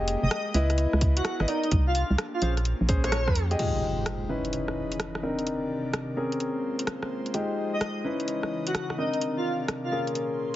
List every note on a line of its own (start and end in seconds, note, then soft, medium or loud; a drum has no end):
0.00 0.16 F1 loud
0.00 0.54 G#3 medium
0.00 0.52 A#3 medium
0.00 0.53 G4 medium
0.00 0.53 G#4 medium
0.00 0.53 D#5 loud
0.00 0.54 G5 medium
0.08 open hi-hat loud
0.23 0.29 F1 loud
0.23 0.28 D#5 medium
0.31 0.41 D#5 medium
0.31 cross-stick loud
0.31 closed hi-hat medium
0.54 0.87 C#2 loud
0.54 1.47 B3 medium
0.54 1.47 E4 medium
0.54 1.36 E4 loud
0.54 1.47 G#4 medium
0.54 1.36 B4 medium
0.54 1.36 D#5 loud
0.54 open hi-hat loud
0.70 cross-stick soft
0.70 closed hi-hat soft
0.78 closed hi-hat medium
0.93 1.21 C#2 loud
0.93 cross-stick medium
1.01 kick loud
1.01 open hi-hat loud
1.16 1.22 F#4 medium
1.16 closed hi-hat medium
1.25 1.35 F#4 medium
1.25 cross-stick loud
1.25 closed hi-hat medium
1.40 1.46 G#1 medium
1.40 1.45 E4 medium
1.40 1.45 B4 medium
1.40 1.45 D#5 loud
1.40 cross-stick medium
1.48 2.41 A#3 medium
1.48 2.41 D4 medium
1.48 1.64 D#4 medium
1.48 1.58 D#4 medium
1.48 2.41 G4 medium
1.48 1.64 A#4 medium
1.48 1.64 D5 medium
1.48 open hi-hat medium
1.63 1.69 D#4 medium
1.63 closed hi-hat soft
1.71 2.04 C2 loud
1.71 kick loud
1.71 closed hi-hat medium
1.87 2.02 F4 medium
1.95 open hi-hat loud
2.10 2.16 C2 loud
2.18 cross-stick loud
2.18 closed hi-hat medium
2.34 2.48 F4 medium
2.42 2.74 A#1 loud
2.42 3.58 A#3 medium
2.42 3.58 C#4 medium
2.42 2.52 C#4 medium
2.42 3.58 F4 medium
2.42 3.58 G#4 medium
2.42 2.52 G#4 medium
2.42 2.52 C5 medium
2.42 open hi-hat loud
2.57 cross-stick soft
2.57 closed hi-hat soft
2.65 closed hi-hat medium
2.81 3.29 A#1 medium
2.89 3.01 C#4 medium
2.89 3.01 G#4 medium
2.89 3.01 C5 loud
2.89 kick loud
2.89 open hi-hat loud
3.04 3.09 C#4 medium
3.04 3.09 G#4 medium
3.04 3.09 C5 loud
3.04 3.36 C#5 loud
3.04 cross-stick medium
3.04 closed hi-hat medium
3.12 cross-stick loud
3.12 closed hi-hat medium
3.28 3.56 F2 medium
3.28 kick medium
3.28 cross-stick medium
3.36 open hi-hat loud
3.51 3.57 G4 medium
3.51 3.83 G#4 medium
3.51 3.83 D#5 loud
3.51 closed hi-hat soft
3.59 4.29 F3 medium
3.59 4.27 G#3 medium
3.59 4.29 G#3 medium
3.59 4.27 D#4 medium
3.59 4.29 D#4 medium
3.59 4.27 F4 medium
3.59 4.27 G4 medium
3.59 4.29 G4 medium
3.59 4.29 C5 medium
3.59 closed hi-hat medium
3.59 crash medium
3.59 impact medium
4.06 cross-stick loud
4.06 closed hi-hat medium
4.29 5.22 C#3 medium
4.29 5.22 E3 medium
4.29 5.21 C#4 medium
4.29 5.21 D#4 medium
4.29 5.21 E4 medium
4.29 5.22 G#4 medium
4.29 5.21 B4 medium
4.29 5.22 B4 medium
4.29 5.22 D#5 medium
4.45 closed hi-hat soft
4.53 closed hi-hat medium
4.68 cross-stick medium
4.92 closed hi-hat medium
5.00 cross-stick loud
5.00 closed hi-hat medium
5.15 cross-stick medium
5.23 6.16 C3 medium
5.23 6.16 D#3 medium
5.23 6.15 C4 medium
5.23 6.15 D4 medium
5.23 6.15 D#4 medium
5.23 6.16 G4 medium
5.23 6.16 A#4 medium
5.23 6.15 A#4 medium
5.23 6.16 D5 medium
5.39 closed hi-hat soft
5.47 closed hi-hat medium
5.94 cross-stick loud
5.94 closed hi-hat medium
6.17 8.95 G#3 medium
6.17 7.33 A#3 medium
6.17 7.32 C4 medium
6.17 7.32 C#4 medium
6.17 7.33 F4 medium
6.17 7.32 G#4 medium
6.17 7.32 A#4 medium
6.17 8.03 C5 medium
6.32 closed hi-hat soft
6.40 closed hi-hat medium
6.79 closed hi-hat medium
6.87 cross-stick loud
6.87 closed hi-hat medium
7.03 cross-stick medium
7.26 closed hi-hat soft
7.34 8.04 F3 medium
7.34 8.03 G#3 medium
7.34 8.03 D#4 medium
7.34 8.03 F4 medium
7.34 8.04 G4 medium
7.34 8.03 G4 medium
7.34 8.03 D#5 medium
7.34 closed hi-hat medium
7.73 7.78 D#5 medium
7.81 7.91 D#5 medium
7.81 cross-stick loud
7.81 closed hi-hat medium
8.04 8.97 C#3 medium
8.04 8.97 E3 medium
8.04 8.96 C#4 medium
8.04 8.96 D#4 medium
8.04 8.96 E4 medium
8.04 8.96 B4 medium
8.04 8.97 B4 medium
8.04 8.97 D#5 medium
8.20 closed hi-hat soft
8.28 closed hi-hat medium
8.43 cross-stick medium
8.67 8.72 F#4 medium
8.67 closed hi-hat medium
8.75 cross-stick loud
8.75 closed hi-hat medium
8.90 cross-stick medium
8.98 9.91 C3 medium
8.98 9.91 D#3 medium
8.98 9.90 C4 medium
8.98 9.90 D4 medium
8.98 9.90 D#4 medium
8.98 9.08 D#4 medium
8.98 9.91 G4 medium
8.98 9.90 A#4 medium
8.98 9.91 A#4 medium
8.98 9.91 D5 medium
9.13 9.19 D#4 medium
9.13 closed hi-hat soft
9.21 closed hi-hat medium
9.37 9.52 F4 medium
9.68 cross-stick loud
9.68 closed hi-hat medium
9.84 9.98 F4 medium
9.92 10.56 A#2 medium
9.92 10.56 A#3 medium
9.92 10.56 C#4 medium
9.92 10.56 F4 medium
9.92 10.56 G#4 medium
9.92 10.56 A#4 medium
9.92 10.56 C6 medium
10.07 closed hi-hat soft
10.15 closed hi-hat medium